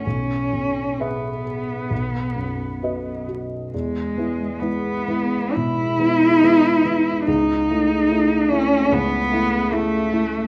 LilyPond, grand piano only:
\new Staff \with { instrumentName = "Grand piano" } { \time 4/4 \key e \major \tempo 4 = 69 b,,8 b,8 <gis' b' e''>8 gis'8 b,,8 fis,8 <fis' b' dis''>8 fis'8 | e,8 <gis b e'>8 <gis b e'>8 <gis b e'>8 b,8 <gis b e'>8 <gis b e'>8 <gis b e'>8 | cis,8 <a e'>8 <a e'>8 <a e'>8 cis,8 <a e'>8 <a e'>8 <a e'>8 | }